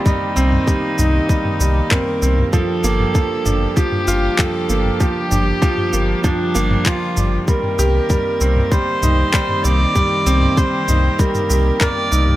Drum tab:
SH |x-x-x-x-x-x-x-x-|x-x-x-x-x-x-x-x-|x-x-x-x-x-x-x-x-|x-x-x-x-x-x-x-x-|
CP |------------x---|------------x---|------------x---|------------x---|
T2 |o--o--o--o--o--o|o--o--o--o--o--o|--o--o--o--o--o-|-o--o--o--o--o--|
BD |o---o---o---o---|o---o---o---o---|o---o---o---o---|o---o---o---o---|

SH |x-x-x-x-xxx-x-x-|
CP |------------x---|
T2 |o--o--o--o--o--o|
BD |o---o---o---o---|